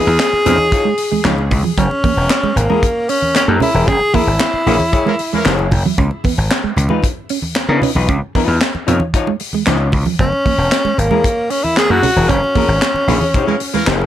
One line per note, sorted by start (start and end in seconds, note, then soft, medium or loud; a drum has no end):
0.00 1.52 G#4 loud
0.07 0.17 E2 loud
0.19 snare loud
0.19 clap medium
0.19 closed hi-hat medium
0.33 muted slap bass stroke soft
0.33 muted conga soft
0.46 0.56 F2 medium
0.46 0.53 B3 medium
0.46 0.66 D#4 medium
0.46 0.66 F4 medium
0.46 0.67 C#5 medium
0.46 closed hi-hat medium
0.46 low conga medium
0.58 high conga medium
0.71 0.87 D#4 medium
0.71 0.87 F4 medium
0.71 0.88 C#5 medium
0.71 kick loud
0.71 closed hi-hat medium
0.71 muted conga soft
0.85 0.93 G#3 medium
0.98 muted clean electric guitar stroke soft
0.98 open hi-hat medium
1.12 1.19 G#3 medium
1.12 high conga medium
1.25 1.45 C#2 medium
1.25 1.33 F3 medium
1.25 1.40 D#4 medium
1.25 1.40 F4 medium
1.25 1.40 C#5 medium
1.25 snare loud
1.25 clap medium
1.25 closed hi-hat medium
1.38 muted conga soft
1.51 1.62 C#2 medium
1.51 muted clean electric guitar stroke soft
1.51 kick loud
1.51 open hi-hat medium
1.51 low conga loud
1.63 1.72 F3 medium
1.63 high conga medium
1.77 1.88 F#1 loud
1.77 1.85 F#3 medium
1.77 2.59 C#4 medium
1.77 kick loud
1.77 closed hi-hat medium
1.77 muted conga soft
1.91 muted clean electric guitar stroke soft
1.91 muted conga soft
2.04 2.12 A#3 medium
2.04 kick medium
2.04 open hi-hat medium
2.04 high conga medium
2.17 2.27 E1 medium
2.30 snare loud
2.30 clap medium
2.30 closed hi-hat loud
2.43 2.51 G#3 medium
2.43 muted slap bass stroke soft
2.43 muted conga soft
2.56 2.66 G#1 medium
2.56 3.11 A#3 medium
2.56 muted clean electric guitar stroke soft
2.56 closed hi-hat medium
2.56 low conga medium
2.70 2.77 G#3 medium
2.70 2.85 E4 medium
2.70 2.85 G#4 medium
2.70 2.84 A#4 medium
2.70 high conga medium
2.83 kick loud
2.83 closed hi-hat medium
2.83 muted conga soft
3.09 3.17 C#4 medium
3.09 3.36 C#4 medium
3.09 open hi-hat medium
3.22 high conga medium
3.35 3.48 C#4 medium
3.35 muted clean electric guitar stroke soft
3.35 snare medium
3.35 clap medium
3.35 closed hi-hat medium
3.35 muted conga soft
3.48 3.59 F#2 medium
3.48 3.56 A#3 medium
3.48 3.69 E4 medium
3.48 3.69 G#4 medium
3.48 3.68 A#4 medium
3.60 3.69 C#4 medium
3.60 3.89 E4 loud
3.60 open hi-hat medium
3.60 low conga medium
3.74 3.85 E1 medium
3.74 3.87 E4 medium
3.74 3.87 G#4 medium
3.74 3.86 A#4 medium
3.74 high conga medium
3.88 3.98 F#1 loud
3.88 3.96 C#4 medium
3.88 4.16 G#4 loud
3.88 kick loud
3.88 closed hi-hat medium
4.01 muted clean electric guitar stroke soft
4.14 4.22 A#3 medium
4.14 4.29 E4 medium
4.14 5.72 E4 loud
4.14 4.29 G#4 medium
4.14 4.29 A#4 loud
4.14 kick medium
4.14 open hi-hat medium
4.14 high conga medium
4.27 4.38 G#1 loud
4.40 snare loud
4.40 clap loud
4.40 closed hi-hat loud
4.40 muted conga soft
4.54 muted slap bass stroke soft
4.66 4.77 A#1 medium
4.66 4.76 E3 medium
4.66 4.74 A#3 medium
4.66 4.75 A#3 medium
4.66 4.76 C#4 medium
4.66 4.81 E4 medium
4.66 4.82 G#4 medium
4.66 4.75 A#4 medium
4.66 4.82 C#5 medium
4.66 open hi-hat medium
4.66 low conga medium
4.80 high conga medium
4.92 5.07 E4 medium
4.92 5.08 G#4 medium
4.92 5.08 C#5 loud
4.92 kick loud
4.92 closed hi-hat medium
5.06 5.15 E3 medium
5.06 5.14 G#3 medium
5.06 5.15 A#3 medium
5.06 5.15 C#4 medium
5.06 5.15 A#4 medium
5.06 muted conga soft
5.19 muted clean electric guitar stroke soft
5.19 open hi-hat medium
5.33 5.70 E3 medium
5.33 5.41 G#3 medium
5.33 5.71 A#3 medium
5.33 5.70 C#4 medium
5.33 5.71 A#4 loud
5.33 high conga medium
5.45 5.66 F#1 medium
5.45 5.53 F#3 medium
5.45 5.65 E4 medium
5.45 5.66 G#4 medium
5.45 5.66 C#5 loud
5.45 snare loud
5.45 clap medium
5.45 closed hi-hat medium
5.45 muted conga soft
5.59 muted conga soft
5.71 5.82 F#1 medium
5.71 muted clean electric guitar stroke soft
5.71 kick medium
5.71 open hi-hat medium
5.71 low conga medium
5.85 5.93 F#3 medium
5.85 high conga medium
5.98 6.08 C#2 loud
5.98 6.06 C#4 medium
5.98 kick loud
5.98 closed hi-hat medium
5.98 muted conga soft
6.11 muted clean electric guitar stroke soft
6.11 muted conga soft
6.24 6.32 B3 medium
6.24 kick medium
6.24 open hi-hat medium
6.24 high conga medium
6.38 6.48 G#1 medium
6.51 snare loud
6.51 clap medium
6.51 closed hi-hat medium
6.64 6.71 G#3 medium
6.64 muted slap bass stroke soft
6.76 6.87 C#2 medium
6.76 muted clean electric guitar stroke soft
6.76 closed hi-hat medium
6.76 low conga medium
6.89 6.98 G#3 medium
6.89 7.05 D#4 medium
6.89 7.05 F4 medium
6.89 7.05 B4 medium
6.89 high conga medium
7.02 kick loud
7.02 closed hi-hat medium
7.02 muted conga soft
7.29 7.38 C#4 medium
7.29 open hi-hat medium
7.42 high conga medium
7.56 muted clean electric guitar stroke soft
7.56 snare loud
7.56 clap medium
7.56 closed hi-hat medium
7.69 7.79 C#3 loud
7.69 7.77 B3 medium
7.69 7.90 D#4 medium
7.69 7.90 F4 medium
7.69 7.89 B4 medium
7.82 7.90 C#4 medium
7.82 open hi-hat medium
7.82 low conga medium
7.95 8.09 B1 medium
7.95 8.08 D#4 medium
7.95 8.08 F4 medium
7.95 8.07 B4 medium
7.95 high conga medium
8.08 8.19 C#2 loud
8.08 8.16 C#4 medium
8.08 kick loud
8.08 closed hi-hat medium
8.08 muted conga soft
8.22 muted clean electric guitar stroke soft
8.35 8.43 B3 medium
8.35 8.55 D#4 medium
8.35 8.56 F4 medium
8.35 8.56 B4 loud
8.35 kick medium
8.35 open hi-hat medium
8.35 high conga medium
8.48 8.58 E2 medium
8.61 snare loud
8.61 clap loud
8.61 closed hi-hat medium
8.75 muted slap bass stroke soft
8.75 muted conga soft
8.87 8.98 F2 medium
8.87 8.95 B3 medium
8.87 9.02 D#4 medium
8.87 9.02 F4 medium
8.87 9.02 C#5 medium
8.87 closed hi-hat medium
8.87 low conga medium
9.00 high conga medium
9.14 9.29 D#4 medium
9.14 9.29 F4 medium
9.14 9.30 C#5 medium
9.14 kick loud
9.14 closed hi-hat medium
9.27 9.35 G#3 medium
9.27 muted conga soft
9.40 muted clean electric guitar stroke soft
9.40 open hi-hat medium
9.53 9.62 G#3 medium
9.53 high conga medium
9.67 9.88 C#2 medium
9.67 9.74 F3 medium
9.67 9.87 D#4 medium
9.67 9.87 F4 loud
9.67 9.87 C#5 loud
9.67 snare loud
9.67 clap medium
9.67 closed hi-hat medium
9.92 10.03 C#2 medium
9.92 muted clean electric guitar stroke soft
9.92 kick medium
9.92 open hi-hat medium
9.92 low conga medium
10.06 10.14 F3 medium
10.06 high conga medium
10.19 10.30 F#1 loud
10.19 10.27 F#3 medium
10.19 11.01 C#4 loud
10.19 kick loud
10.19 closed hi-hat medium
10.19 muted conga soft
10.32 muted clean electric guitar stroke soft
10.32 muted conga soft
10.46 10.53 A#3 medium
10.46 kick medium
10.46 open hi-hat medium
10.46 high conga medium
10.58 10.69 E1 loud
10.72 snare loud
10.72 clap loud
10.72 closed hi-hat medium
10.72 muted conga soft
10.85 10.92 G#3 medium
10.85 muted slap bass stroke medium
10.85 muted conga soft
10.98 11.08 G#1 medium
10.98 11.52 A#3 medium
10.98 muted clean electric guitar stroke soft
10.98 closed hi-hat medium
10.98 low conga medium
11.11 11.18 G#3 medium
11.11 11.26 E4 medium
11.11 11.26 G#4 medium
11.11 11.26 A#4 medium
11.11 high conga loud
11.24 kick loud
11.24 closed hi-hat medium
11.24 muted conga soft
11.50 11.58 C#4 medium
11.50 11.65 C#4 medium
11.50 open hi-hat medium
11.64 11.79 E4 loud
11.64 high conga medium
11.76 11.92 G#4 loud
11.76 muted clean electric guitar stroke soft
11.76 snare loud
11.76 clap medium
11.76 closed hi-hat medium
11.90 12.00 F#2 medium
11.90 11.97 A#3 medium
11.90 12.05 E4 medium
11.90 12.31 F#4 loud
11.90 12.05 G#4 medium
11.90 12.05 A#4 medium
11.90 muted conga soft
12.03 12.10 C#4 medium
12.03 open hi-hat medium
12.03 low conga loud
12.16 12.26 E1 medium
12.16 12.28 E4 medium
12.16 12.28 G#4 medium
12.16 12.28 A#4 medium
12.16 high conga medium
12.29 12.40 F#1 loud
12.29 12.37 C#4 medium
12.29 14.06 C#4 medium
12.29 kick loud
12.29 closed hi-hat medium
12.29 muted conga soft
12.42 muted clean electric guitar stroke soft
12.42 muted conga soft
12.55 12.63 A#3 medium
12.55 12.70 E4 medium
12.55 12.71 G#4 medium
12.55 12.71 A#4 loud
12.55 kick medium
12.55 open hi-hat medium
12.55 high conga medium
12.68 12.79 G#1 loud
12.82 snare loud
12.82 clap medium
12.82 closed hi-hat medium
12.82 muted conga soft
12.94 muted slap bass stroke soft
12.94 muted conga soft
13.07 13.18 A#1 medium
13.07 13.16 E3 medium
13.07 13.16 A#3 medium
13.07 13.16 C#4 medium
13.07 13.23 E4 medium
13.07 13.23 G#4 medium
13.07 13.16 A#4 medium
13.07 13.23 C#5 medium
13.07 open hi-hat medium
13.07 low conga medium
13.21 high conga medium
13.34 13.55 E4 medium
13.34 13.55 G#4 medium
13.34 13.55 C#5 medium
13.34 kick loud
13.34 closed hi-hat loud
13.34 muted conga soft
13.34 low conga medium
13.47 13.56 E3 medium
13.47 13.55 G#3 medium
13.47 13.56 A#3 medium
13.47 13.56 C#4 medium
13.47 13.56 A#4 medium
13.47 muted conga soft
13.60 muted clean electric guitar stroke soft
13.60 open hi-hat medium
13.74 14.06 E3 medium
13.74 13.81 G#3 medium
13.74 14.06 A#3 medium
13.74 14.06 C#4 medium
13.74 14.06 A#4 loud
13.74 high conga medium
13.87 14.06 F#1 medium
13.87 13.95 F#3 medium
13.87 14.06 E4 medium
13.87 14.06 G#4 medium
13.87 14.06 C#5 loud
13.87 snare loud
13.87 clap medium
13.87 closed hi-hat medium
14.01 muted conga soft